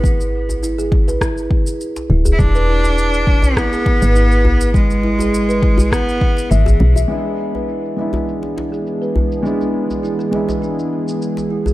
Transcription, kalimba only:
X:1
M:4/4
L:1/16
Q:"Swing 16ths" 1/4=102
K:none
V:1 name="Kalimba"
z4 E ^G z B E z4 z E G | z B E z4 z E ^G z B E z3 | z2 E ^G z B E z3 B, z e G z e | E ^G z B E z4 z E G z B E z |
z4 E ^G z B E z4 z E G |]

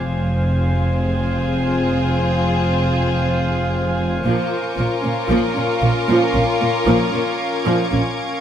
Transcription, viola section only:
X:1
M:4/4
L:1/16
Q:1/4=57
K:F
V:1 name="Viola section"
C16 | F, z B, _D F, D B, F, D B, F, D z F, D z |]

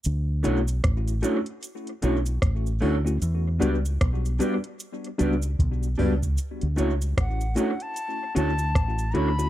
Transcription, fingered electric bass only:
X:1
M:4/4
L:1/16
Q:"Swing 16ths" 1/4=76
K:D
V:1 name="Fingered electric bass" clef=bass
D,,2 B,,,2 A,,,2 z4 B,,,2 A,,,2 D,,2 | E,,2 C,,2 B,,,2 z4 C,,2 B,,,2 C,,2 | z D,, C,,2 A,,,2 z4 D,,2 A,,,2 D,,2 |]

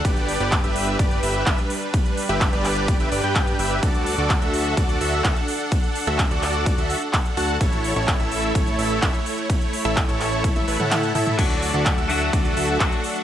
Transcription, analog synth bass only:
X:1
M:4/4
L:1/16
Q:1/4=127
K:D
V:1 name="Analog synth bass" clef=bass
G,,,3 G,,,2 G,,,3 G,,,2 G,,,2 G,,, z3 | z3 G,,,2 G,,,4 G,,, G,,, G,,3 G,,,2 | D,,3 D,,2 D,,3 D,,2 D,,2 D,, z3 | z3 D,,2 D,,4 D,, z4 D,,2 |
A,,,3 A,,,2 A,,,3 A,,,2 A,,,2 A,,, z3 | z3 A,,,2 A,,,4 A,,, A,,, A,,3 A,,2 | D,,3 D,,2 D,,3 D,,2 D,,2 D,, z3 |]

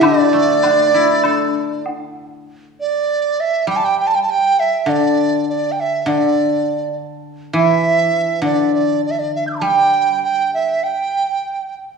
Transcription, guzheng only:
X:1
M:4/4
L:1/8
Q:1/4=100
K:none
V:1 name="Guzheng" clef=bass
D, A, D E A4 | z4 G,4 | D,4 D,4- | D, E,3 D,4 |
G,6 z2 |]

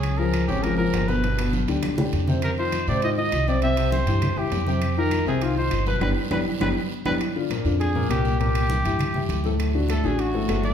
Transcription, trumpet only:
X:1
M:4/4
L:1/8
Q:1/4=201
K:Cm
V:1 name="Trumpet"
A B2 G B B2 =B- | =B z6 z | B c2 d e e2 d | =e2 c3 G2 G- |
G B2 A F c2 =B | =B z B z B z2 B | z4 A2 G2 | G6- G z |
z2 =A _A ^F3 d |]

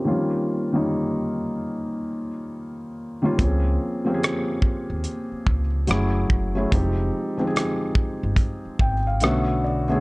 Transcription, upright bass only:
X:1
M:4/4
L:1/16
Q:"Swing 16ths" 1/4=72
K:Ebmix
V:1 name="Upright bass" clef=bass
z16 | D,,2 z4 z E,, z2 D,,2 _G,,,2 G,,,2 | F,,,2 z4 z G,,, z2 A,,,2 =B,,,4 |]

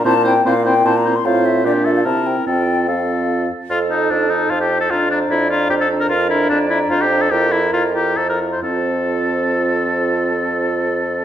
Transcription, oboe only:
X:1
M:3/4
L:1/16
Q:1/4=147
K:F
V:1 name="Oboe"
c2 c2 c2 c2 c2 c2 | c4 G2 A2 B4 | A4 A6 z2 | F2 _E2 D2 E2 F G2 A |
F2 D2 E2 F2 G A2 B | F2 E2 D2 E2 F G2 A | G2 E2 F2 G2 A B2 c | A12- |
A12 |]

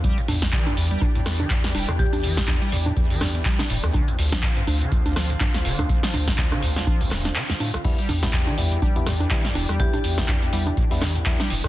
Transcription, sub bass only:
X:1
M:4/4
L:1/16
Q:"Swing 16ths" 1/4=123
K:Ephr
V:1 name="Sub bass" clef=bass
E,, z E,,2 z2 E,,2 z E,, E,,2 z2 E,,, E,,- | E,, z E,,2 z2 E,,2 z E,, E,,2 z2 E,,, D,,- | D,, z D,,2 z2 D,,2 z D,, D,,2 z2 D,,, D,,- | D,, z D,,2 z2 D,,2 z D,, D,,,2 z4 |
z2 E,,2 z2 E,,2 z E,, E,,2 z2 E,,, E,,- | E,, z E,,2 z2 E,,2 z E,, E,,2 z2 E,,, D,, |]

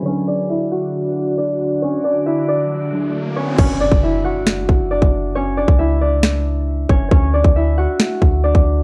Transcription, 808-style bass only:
X:1
M:4/4
L:1/16
Q:1/4=136
K:Dlyd
V:1 name="808-style bass" clef=bass
z16 | z16 | F,,,3 F,,,6- F,,, F,,,3 F,,,3- | F,,,3 C,,8- C,,3 F,,,2 |
D,,3 D,,4 z3 D,,3 D,,3 |]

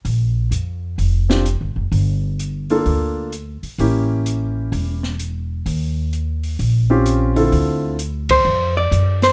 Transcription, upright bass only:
X:1
M:4/4
L:1/8
Q:"Swing" 1/4=128
K:Dm
V:1 name="Upright bass" clef=bass
B,,,2 F,,2 F,,,2- (3F,,, G,,, F,,, | G,,,4 D,,3 z | A,,,4 E,,,4 | _E,,4 B,,,4 |
D,,4 F,,2 ^F,,2 |]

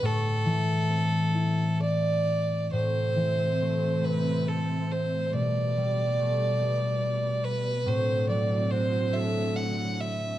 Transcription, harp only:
X:1
M:3/4
L:1/8
Q:1/4=69
K:Ador
V:1 name="Harp" clef=bass
A,, E, C E3 | A,, E, A, C3 | B,, G, A, B,3 | A,, F, F A3 |]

